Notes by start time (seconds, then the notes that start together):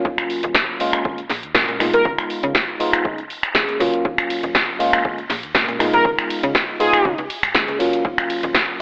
Already playing: F#3 A#3 C#4 F4
0.05 D#2, kick
0.18 finger snap, closed hi-hat
0.30 open hi-hat
0.43 D#1, closed hi-hat
0.55 kick, snare
0.80 G#3 A#3 C#4 F4, open hi-hat
0.93 finger snap, closed hi-hat
1.05 A#3 F4, kick
1.18 A#1, closed hi-hat
1.30 A#1, snare, open hi-hat
1.43 D#2, closed hi-hat
1.55 A#2 G#3 A#3 C#4 A#4, kick, snare
1.68 A#2, closed hi-hat
1.79 A#2 G#3 B3 D#4 F4, finger snap, open hi-hat
1.93 A#1 A#4, closed hi-hat
2.05 C#2, kick
2.18 finger snap, closed hi-hat
2.30 open hi-hat
2.43 C#3, closed hi-hat
2.55 kick, snare
2.80 G#3 B3 D#4 F4, open hi-hat
2.93 finger snap, closed hi-hat
3.04 G#3 A#3 C#4 D#4, kick
3.18 closed hi-hat
3.30 open hi-hat
3.43 finger snap, closed hi-hat
3.54 G#3 A#3 C#4 G#4, kick, snare
3.69 closed hi-hat
3.79 C#2 F#3 A#3 C#4 F4, open hi-hat
3.94 closed hi-hat
4.05 D#2, kick
4.18 finger snap, closed hi-hat
4.30 open hi-hat, ride
4.43 D#1, closed hi-hat
4.55 kick, snare
4.79 G#3 A#3 C#4 F4, open hi-hat, ride
4.93 finger snap, closed hi-hat
5.04 G#3 F4, kick
5.18 A#1, closed hi-hat
5.30 A#1, snare, open hi-hat, ride
5.43 D#2, closed hi-hat
5.55 A#2 G#3 A#3 C#4 A#4, kick, snare
5.68 A#2, closed hi-hat
5.79 A#2 G#3 B3 D#4 F4, finger snap, open hi-hat, ride
5.93 A#1 A#4, closed hi-hat
6.05 C#2, kick
6.19 finger snap, closed hi-hat
6.31 open hi-hat, ride
6.43 C#3, closed hi-hat
6.55 kick, snare
6.79 G#3 B3 D#4 F4 G#4, open hi-hat, ride
6.94 finger snap, closed hi-hat
7.05 C#3, kick
7.18 C#2, closed hi-hat
7.30 open hi-hat, ride
7.43 G#2, finger snap, closed hi-hat
7.54 G#2 G#3 A#3 C#4 G#4, kick, snare
7.68 C#2, closed hi-hat
7.79 F#3 A#3 C#4 F4, open hi-hat, ride
7.93 closed hi-hat
8.05 D#2, kick
8.18 finger snap, closed hi-hat
8.30 open hi-hat, ride
8.43 D#1, closed hi-hat
8.55 kick, snare